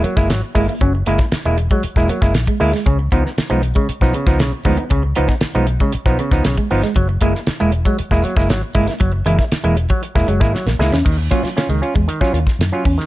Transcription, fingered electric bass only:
0.17 0.30 F#1 medium
0.30 0.41 G#1 medium
0.56 0.66 G1 medium
0.81 1.02 F#1 loud
1.07 1.17 F#1 loud
1.33 muted fingered electric bass stroke soft
1.45 1.66 E1 medium
1.84 muted fingered electric bass stroke soft
1.96 2.07 E1 medium
2.22 2.33 F#1 medium
2.35 2.45 A#1 medium
2.61 2.71 D2 medium
2.87 3.08 C#2 loud
3.12 3.23 C#2 medium
3.38 muted fingered electric bass stroke soft
3.51 3.71 B1 medium
3.89 muted fingered electric bass stroke medium
4.02 4.12 B1 loud
4.27 4.41 C#2 medium
4.41 4.51 B1 loud
4.65 4.76 D2 medium
4.91 5.12 C#2 loud
5.18 5.28 C#2 loud
5.43 muted fingered electric bass stroke soft
5.55 5.76 B1 medium
5.95 muted fingered electric bass stroke medium
6.06 6.17 B1 medium
6.32 6.42 C#2 medium
6.46 6.56 B1 loud
6.72 6.81 G1 medium
6.96 7.17 F#1 loud
7.22 7.32 F#1 medium
7.49 muted fingered electric bass stroke soft
7.61 7.82 E1 medium
8.00 muted fingered electric bass stroke soft
8.11 8.21 E1 medium
8.37 8.51 F#1 medium
8.51 8.61 G#1 loud
8.75 8.86 G1 medium
9.01 9.22 F#1 loud
9.26 9.36 F#1 medium
9.52 muted fingered electric bass stroke soft
9.64 9.85 E1 medium
10.16 10.27 E1 loud
10.28 10.41 F#1 medium
10.41 10.52 G#1 medium
10.66 10.77 A#1 loud
10.79 10.90 C#2 medium
10.91 11.02 E2 medium
11.06 11.27 D#2 loud
11.43 muted fingered electric bass stroke soft
11.69 11.80 C#2 medium
11.96 12.06 E2 medium
12.21 muted fingered electric bass stroke soft
12.34 12.44 D#2 loud
12.59 12.70 F#2 medium
12.86 12.96 E2 medium

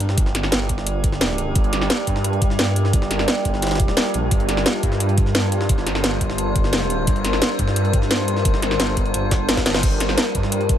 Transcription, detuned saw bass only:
0.00 0.16 G2 loud
0.18 0.51 G1 loud
0.52 1.54 G1 loud
1.55 1.89 G1 loud
2.07 2.92 G2 loud
2.93 3.27 G1 loud
3.45 3.95 G1 loud
4.14 4.30 A#1 loud
4.31 4.64 G1 loud
4.83 5.68 G2 loud
5.69 6.02 G1 loud
6.04 7.06 G1 loud
7.07 7.40 G1 loud
7.59 8.44 G2 loud
8.45 8.78 G1 loud
8.80 9.13 G1 loud
9.14 9.82 G1 loud
9.83 10.16 G1 loud
10.35 10.78 G2 loud

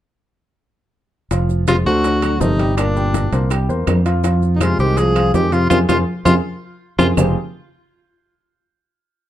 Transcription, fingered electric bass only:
1.31 1.82 F1 medium
1.86 2.37 D2 medium
2.41 3.27 G1 medium
3.32 3.67 C2 medium
3.69 3.86 E2 medium
3.87 4.73 F2 medium
4.79 5.30 C2 medium
5.34 5.68 F2 medium
5.71 5.84 F2 medium
5.89 6.03 F2 medium
6.25 6.39 F2 medium
6.98 7.12 F2 medium
7.17 7.34 F1 medium

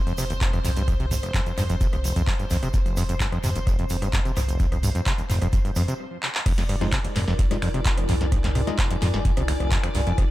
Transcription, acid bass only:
0.07 0.13 F2 loud
0.18 0.25 C3 medium
0.30 0.34 D#2 medium
0.41 0.51 F1 medium
0.53 0.59 F2 loud
0.65 0.71 F2 medium
0.77 0.83 G2 medium
0.88 0.94 F2 loud
1.00 1.06 C3 medium
1.11 1.15 D#2 medium
1.23 1.32 F1 medium
1.34 1.41 F2 loud
1.46 1.52 F2 medium
1.57 1.64 G2 medium
1.69 1.76 F2 loud
1.81 1.87 C3 medium
1.93 1.97 D#2 medium
2.04 2.14 F1 medium
2.16 2.22 F2 loud
2.27 2.34 F2 medium
2.39 2.45 G2 medium
2.50 2.57 F2 loud
2.63 2.69 C3 medium
2.74 2.78 D#2 medium
2.86 2.95 F1 medium
2.97 3.04 F2 loud
3.09 3.15 F2 medium
3.20 3.27 G2 medium
3.32 3.39 F2 loud
3.44 3.50 C3 medium
3.56 3.59 D#2 medium
3.67 3.77 F1 medium
3.79 3.85 F2 loud
3.90 3.97 F2 medium
4.02 4.08 G2 medium
4.13 4.20 F2 loud
4.25 4.32 C3 medium
4.37 4.41 D#2 medium
4.48 4.58 F1 medium
4.60 4.66 F2 loud
4.72 4.78 F2 medium
4.83 4.90 G2 medium
4.95 5.01 F2 loud
5.06 5.13 C3 medium
5.18 5.22 D#2 medium
5.30 5.40 F1 medium
5.42 5.48 F2 loud
5.53 5.59 F2 medium
5.65 5.71 G2 medium
5.76 5.83 F2 loud
5.88 5.94 C3 medium
6.46 6.53 F2 loud
6.58 6.64 F2 medium
6.69 6.76 G2 medium
6.81 6.87 F2 loud
6.92 6.99 C3 medium
7.04 7.08 D#2 medium
7.16 7.26 F1 medium
7.28 7.34 F2 loud
7.39 7.46 F2 medium
7.51 7.57 G2 medium
7.62 7.69 F2 loud
7.74 7.80 C3 medium
7.86 7.89 D#2 medium
7.98 8.07 F1 medium
8.09 8.15 F2 loud
8.21 8.27 F2 medium
8.32 8.39 G2 medium
8.44 8.50 F2 loud
8.55 8.62 C3 medium
8.67 8.71 D#2 medium
8.79 8.88 F1 medium
8.91 8.97 F2 loud
9.02 9.08 F2 medium
9.14 9.20 G2 medium
9.25 9.32 F2 loud
9.37 9.43 C3 medium
9.48 9.52 D#2 medium
9.60 9.70 F1 medium
9.71 9.78 F2 loud
9.83 9.90 F2 medium
9.95 10.01 G2 medium
10.07 10.13 F2 loud
10.18 10.25 C3 medium

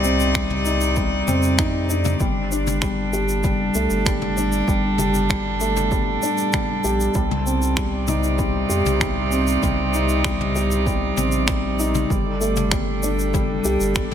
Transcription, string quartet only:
0.00 2.20 C3 medium
0.00 3.15 C4 medium
0.00 2.20 D#4 medium
0.00 2.95 D5 loud
2.20 7.15 G3 medium
2.20 7.15 D4 medium
2.77 7.90 A4 medium
7.16 12.10 C3 medium
7.27 12.86 C4 medium
7.51 12.10 D#4 medium
7.95 13.40 D5 medium
12.11 14.14 G3 medium
12.18 14.14 A4 medium
12.31 14.14 D4 medium

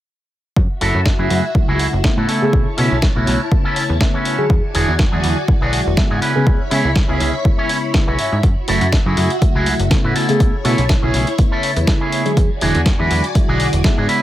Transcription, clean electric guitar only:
0.81 1.00 E4 loud
0.81 1.00 F#4 medium
0.81 1.00 A4 loud
1.19 1.43 E4 medium
1.19 1.44 F#4 medium
1.19 1.44 G#4 medium
1.68 1.86 E4 medium
1.68 1.86 F#4 loud
1.68 1.86 G#4 loud
2.04 muted clean electric guitar stroke soft
2.17 2.27 E4 medium
2.17 2.29 F#4 medium
2.17 2.28 A4 medium
2.28 2.69 C#4 medium
2.28 2.69 E4 medium
2.28 2.69 A4 medium
2.77 2.97 C#4 loud
2.77 2.97 E4 medium
2.77 2.97 A4 loud
3.16 3.40 C#4 medium
3.16 3.40 E4 medium
3.16 3.41 F#4 medium
3.64 3.83 C#4 loud
3.64 3.83 E4 medium
3.64 3.83 A4 loud
4.00 muted clean electric guitar stroke soft
4.14 4.44 C#4 medium
4.14 4.44 E4 medium
4.14 4.44 F#4 medium
4.74 4.93 D4 medium
4.74 4.93 F#4 loud
4.74 4.94 G#4 loud
5.12 5.37 D4 medium
5.12 5.37 F#4 medium
5.12 5.37 G#4 medium
5.61 5.79 D4 loud
5.61 5.79 F#4 medium
5.61 5.80 G#4 loud
5.97 muted clean electric guitar stroke soft
6.10 6.21 D4 medium
6.10 6.22 F#4 medium
6.10 6.22 G#4 medium
6.21 6.62 C#4 medium
6.21 6.62 E4 medium
6.21 6.62 B4 medium
6.71 6.90 C#4 medium
6.71 6.90 E4 loud
6.71 6.90 G#4 loud
7.08 7.33 C#4 medium
7.08 7.34 E4 medium
7.08 7.34 G#4 medium
7.58 7.76 C#4 loud
7.58 7.76 E4 medium
7.58 7.76 C#5 loud
7.94 muted clean electric guitar stroke soft
8.07 8.38 C#4 medium
8.07 8.38 E4 medium
8.07 8.38 F#4 medium
8.68 8.87 E4 medium
8.68 8.87 F#4 loud
8.68 8.87 A4 loud
9.06 9.30 E4 medium
9.06 9.31 F#4 medium
9.06 9.31 G#4 medium
9.55 9.73 E4 medium
9.55 9.73 F#4 loud
9.55 9.73 G#4 loud
10.04 10.14 E4 medium
10.04 10.16 F#4 medium
10.04 10.15 B4 medium
10.15 10.56 C#4 medium
10.15 10.56 E4 medium
10.15 10.56 A4 medium
10.65 10.84 C#4 loud
10.65 10.84 E4 medium
10.65 10.84 A4 loud
11.02 11.27 C#4 medium
11.02 11.27 E4 medium
11.02 11.27 G#4 loud
11.51 11.70 C#4 loud
11.51 11.70 E4 loud
11.51 11.70 A4 loud
11.87 muted clean electric guitar stroke soft
12.00 12.31 C#4 medium
12.00 12.31 E4 medium
12.00 12.31 G#4 medium
12.61 12.80 D4 loud
12.61 12.80 F#4 loud
12.61 12.80 G#4 loud
12.99 13.24 D4 medium
12.99 13.24 F#4 medium
12.99 13.24 B4 loud
13.48 13.66 D4 medium
13.48 13.66 F#4 medium
13.48 13.67 G#4 loud
13.84 muted clean electric guitar stroke soft
13.97 14.09 D4 medium
13.97 14.09 F#4 medium
13.97 14.09 G#4 medium
14.08 14.22 C#4 medium
14.08 14.22 E4 medium
14.08 14.22 B4 loud

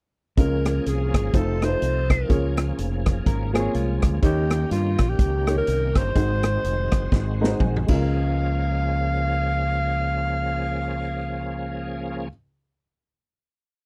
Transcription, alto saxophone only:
0.39 0.90 A#4 medium
0.88 1.38 G#4 medium
1.37 1.65 A4 medium
1.64 2.12 C5 loud
2.11 2.59 A#4 medium
4.25 4.68 G4 medium
4.72 5.11 F4 medium
5.09 5.57 G4 medium
5.58 5.98 A#4 loud
5.97 7.61 C5 loud
7.88 12.28 F5 medium

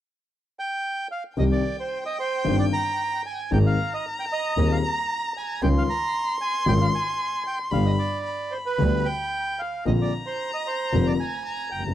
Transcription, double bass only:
1.37 1.60 C2 medium
2.46 2.68 G1 medium
3.52 3.74 G#1 medium
4.57 4.79 D#2 medium
5.63 5.84 C#2 medium
6.67 6.89 G#1 medium
7.72 7.94 G1 medium
8.79 9.01 D2 medium
9.87 10.09 A#1 medium
10.94 11.15 F1 medium
11.72 11.94 F#1 soft

